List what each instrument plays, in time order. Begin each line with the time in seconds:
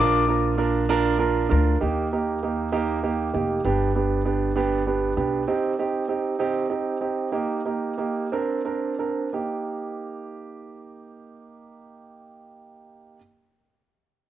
Already playing: upright bass A#1, grand piano D4 F4 A#4 D6
0.28 grand piano D4 F4 A#4
0.57 grand piano D4 F4 A#4
0.89 grand piano D4 F4 A#4
1.19 grand piano D4 F4 A#4
1.49 upright bass D2, grand piano D4 F4 A#4
1.81 upright bass D#2, grand piano A#3 D#4 G4
2.13 grand piano A#3 D#4 G4
2.43 grand piano A#3 D#4 G4
2.72 grand piano A#3 D#4 G4
3.03 grand piano A#3 D#4 G4
3.34 upright bass F1, grand piano A#3 D#4 G4
3.64 upright bass G1, grand piano B3 D4 G4
3.95 grand piano B3 D4 G4
4.25 grand piano B3 D4 G4
4.56 grand piano B3 D4 G4
4.87 grand piano B3 D4 G4
5.17 upright bass B1, grand piano B3 D4 G4
5.48 grand piano C4 D#4 G4
5.79 grand piano C4 D#4 G4
6.08 grand piano C4 D#4 G4
6.39 grand piano C4 D#4 G4
6.70 grand piano C4 D#4 G4
7.01 grand piano C4 D#4 G4
7.32 grand piano A#3 D#4 G4
7.65 grand piano A#3 D#4 G4
7.98 grand piano A#3 D#4 G4
8.32 grand piano C4 D4 A#4
8.65 grand piano C4 D4 A#4
8.99 grand piano C4 D4 A#4
9.33 grand piano A#3 D#4 G4